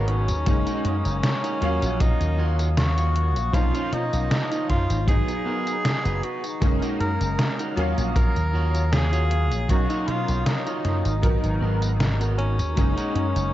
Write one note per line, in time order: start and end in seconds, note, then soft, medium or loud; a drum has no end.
0.00 0.30 G#1 medium
0.00 0.40 B2 medium
0.00 0.39 F#3 medium
0.00 0.10 A#3 medium
0.00 0.28 B3 medium
0.00 0.40 D#4 medium
0.00 0.28 F#4 medium
0.00 0.45 G#4 medium
0.00 0.39 A#4 medium
0.00 0.29 C#5 loud
0.00 1.59 A#5 medium
0.08 0.85 C#4 loud
0.08 closed hi-hat medium
0.28 0.43 D#2 medium
0.28 closed hi-hat soft
0.28 tambourine medium
0.45 0.63 F#1 medium
0.45 1.54 G#3 medium
0.45 1.54 A#3 medium
0.45 1.55 C#4 medium
0.45 1.56 D#4 medium
0.45 5.04 C#5 medium
0.45 1.61 D#6 medium
0.45 kick loud
0.45 closed hi-hat loud
0.45 tambourine soft
0.66 0.95 D#4 loud
0.66 0.95 F#4 loud
0.66 0.95 A#4 loud
0.66 closed hi-hat soft
0.66 tambourine soft
0.85 1.01 F#2 medium
0.85 2.02 C#4 loud
0.85 closed hi-hat medium
1.05 1.20 F#1 medium
1.05 closed hi-hat soft
1.05 tambourine medium
1.22 muted clean electric guitar stroke soft
1.22 snare loud
1.22 closed hi-hat loud
1.22 tambourine soft
1.43 1.61 D#4 medium
1.43 1.61 F#4 medium
1.43 1.62 A#4 loud
1.43 closed hi-hat soft
1.43 tambourine soft
1.61 1.78 D#2 medium
1.61 3.46 F#3 medium
1.61 3.47 A#3 medium
1.61 3.47 C#4 medium
1.61 2.24 F4 medium
1.61 2.24 F#4 medium
1.61 2.25 C#5 loud
1.61 5.05 F5 medium
1.61 3.48 F5 loud
1.61 5.05 D#6 medium
1.61 closed hi-hat medium
1.82 2.13 A#1 medium
1.82 closed hi-hat soft
1.82 tambourine medium
2.00 2.51 D#4 loud
2.00 kick loud
2.00 closed hi-hat medium
2.00 tambourine soft
2.20 2.35 D#2 medium
2.20 closed hi-hat soft
2.20 tambourine soft
2.38 3.36 D#2 medium
2.38 2.68 F4 loud
2.38 2.68 F#4 loud
2.38 2.69 C#5 loud
2.59 closed hi-hat soft
2.59 tambourine medium
2.77 3.56 F#4 loud
2.77 snare loud
2.77 closed hi-hat medium
2.77 tambourine soft
2.97 3.36 F4 medium
2.97 3.36 F#4 medium
2.97 3.36 C#5 loud
2.97 closed hi-hat soft
2.97 tambourine soft
3.16 closed hi-hat medium
3.36 3.50 A#1 loud
3.36 closed hi-hat soft
3.36 tambourine medium
3.53 3.70 B1 medium
3.53 5.00 F3 medium
3.53 5.00 A#3 medium
3.53 5.01 C#4 medium
3.53 5.02 D#4 medium
3.53 3.94 F4 loud
3.53 7.73 A#5 medium
3.53 kick loud
3.53 closed hi-hat medium
3.53 tambourine soft
3.74 4.02 D#4 loud
3.74 4.03 F4 loud
3.74 4.03 A#4 loud
3.74 4.03 C#5 loud
3.74 closed hi-hat soft
3.74 tambourine soft
3.92 4.09 B2 medium
3.92 4.69 D#4 loud
3.92 closed hi-hat medium
4.13 4.28 B1 medium
4.13 closed hi-hat soft
4.13 tambourine medium
4.31 snare loud
4.31 closed hi-hat medium
4.31 tambourine soft
4.51 4.98 D#4 medium
4.51 4.99 F4 medium
4.51 4.99 A#4 medium
4.51 4.99 C#5 loud
4.51 closed hi-hat soft
4.51 tambourine soft
4.70 4.86 F#2 medium
4.70 5.06 F4 loud
4.70 kick medium
4.70 snare soft
4.70 closed hi-hat medium
4.90 5.21 G#1 medium
4.90 closed hi-hat soft
4.90 tambourine medium
5.06 6.54 F#3 medium
5.06 6.55 B3 medium
5.06 6.55 D#4 medium
5.06 6.60 G#4 medium
5.06 6.25 G#4 loud
5.06 kick loud
5.06 closed hi-hat medium
5.06 tambourine soft
5.28 closed hi-hat soft
5.28 tambourine soft
5.45 5.75 B3 loud
5.45 5.76 F#4 medium
5.45 5.76 A#4 loud
5.67 closed hi-hat soft
5.67 tambourine medium
5.85 snare loud
5.85 closed hi-hat medium
5.85 tambourine soft
6.04 6.20 F#1 medium
6.04 6.43 B3 medium
6.04 6.44 F#4 medium
6.04 6.44 B4 loud
6.04 closed hi-hat soft
6.04 tambourine soft
6.23 6.74 F#4 loud
6.23 closed hi-hat medium
6.44 closed hi-hat soft
6.44 tambourine medium
6.60 6.78 F#1 medium
6.60 7.69 G#3 medium
6.60 7.70 A#3 medium
6.60 7.70 C#4 medium
6.60 7.71 D#4 medium
6.60 11.19 C#5 medium
6.60 9.66 D#6 medium
6.60 kick loud
6.60 closed hi-hat medium
6.60 tambourine soft
6.82 7.10 D#4 loud
6.82 7.11 F#4 loud
6.82 7.11 A#4 loud
6.82 closed hi-hat soft
6.82 tambourine soft
7.00 7.17 F#2 medium
7.00 7.73 A#4 loud
7.00 closed hi-hat medium
7.21 7.35 F#1 medium
7.21 closed hi-hat soft
7.21 tambourine medium
7.38 muted clean electric guitar stroke soft
7.38 snare loud
7.38 closed hi-hat medium
7.38 tambourine soft
7.59 7.76 D#4 medium
7.59 7.76 F#4 medium
7.59 7.78 A#4 loud
7.59 closed hi-hat soft
7.59 tambourine soft
7.76 7.94 D#2 medium
7.76 9.62 F#3 medium
7.76 9.62 A#3 medium
7.76 9.63 C#4 medium
7.76 8.39 F4 medium
7.76 8.40 F#4 medium
7.76 8.40 C#5 loud
7.76 11.20 F5 medium
7.76 9.63 F5 loud
7.76 closed hi-hat medium
7.98 8.28 A#1 medium
7.98 closed hi-hat soft
7.98 tambourine medium
8.16 8.94 A#4 loud
8.16 kick loud
8.16 closed hi-hat medium
8.16 tambourine soft
8.36 8.51 D#2 medium
8.36 closed hi-hat soft
8.36 tambourine soft
8.53 9.52 D#2 medium
8.53 8.83 F4 loud
8.53 8.84 F#4 loud
8.53 8.84 C#5 loud
8.75 closed hi-hat soft
8.75 tambourine medium
8.93 9.69 G#4 loud
8.93 snare loud
8.93 closed hi-hat medium
8.93 tambourine soft
9.12 9.51 F4 medium
9.12 9.52 F#4 medium
9.12 9.52 C#5 loud
9.12 closed hi-hat soft
9.12 tambourine soft
9.31 closed hi-hat medium
9.52 9.66 A#1 loud
9.52 closed hi-hat soft
9.52 tambourine medium
9.68 9.86 B1 loud
9.68 11.15 F#3 medium
9.68 11.16 A#3 medium
9.68 11.16 C#4 medium
9.68 11.17 D#4 medium
9.68 10.09 F#4 loud
9.68 13.54 A#5 medium
9.68 11.22 D#6 medium
9.68 kick loud
9.68 closed hi-hat medium
9.68 tambourine soft
9.89 10.18 D#4 loud
9.89 10.18 F4 loud
9.89 10.18 A#4 loud
9.89 10.19 C#5 loud
9.89 closed hi-hat soft
9.89 tambourine soft
10.08 10.24 B2 medium
10.08 10.48 F4 loud
10.08 closed hi-hat medium
10.28 10.43 B1 medium
10.28 closed hi-hat soft
10.28 tambourine medium
10.46 12.00 D#4 medium
10.46 muted clean electric guitar stroke soft
10.46 snare loud
10.46 closed hi-hat medium
10.46 tambourine soft
10.66 11.14 D#4 medium
10.66 11.14 F4 medium
10.66 11.15 A#4 medium
10.66 11.15 C#5 loud
10.66 closed hi-hat soft
10.66 tambourine soft
10.85 11.01 F#2 medium
10.85 snare soft
10.85 closed hi-hat medium
11.05 11.36 G#1 medium
11.05 closed hi-hat soft
11.05 tambourine medium
11.22 12.69 F#3 medium
11.22 12.70 B3 medium
11.22 12.71 D#4 medium
11.22 12.76 G#4 medium
11.22 12.70 A#4 medium
11.22 kick loud
11.22 closed hi-hat medium
11.22 tambourine soft
11.44 11.58 G#1 medium
11.44 closed hi-hat soft
11.44 tambourine soft
11.61 12.60 G#1 medium
11.61 11.91 B3 loud
11.61 11.91 F#4 loud
11.61 11.92 A#4 loud
11.82 closed hi-hat soft
11.82 tambourine medium
12.00 snare loud
12.00 closed hi-hat medium
12.00 tambourine soft
12.20 12.59 B3 medium
12.20 12.59 F#4 medium
12.20 12.60 A#4 loud
12.20 closed hi-hat soft
12.20 tambourine soft
12.38 13.11 C#4 medium
12.38 closed hi-hat medium
12.59 12.74 D#2 loud
12.59 closed hi-hat soft
12.59 tambourine medium
12.75 12.94 F#1 loud
12.75 13.54 G#3 medium
12.75 13.54 A#3 medium
12.75 13.54 C#4 medium
12.75 13.54 D#4 medium
12.75 13.54 C#5 medium
12.75 13.54 D#6 medium
12.75 kick loud
12.75 closed hi-hat medium
12.75 tambourine soft
12.97 13.25 D#4 loud
12.97 13.26 F#4 loud
12.97 13.26 A#4 loud
12.97 closed hi-hat soft
12.97 tambourine soft
13.15 13.32 F#2 medium
13.15 13.54 C#4 loud
13.15 closed hi-hat medium
13.36 13.50 F#1 medium
13.36 closed hi-hat soft
13.36 tambourine medium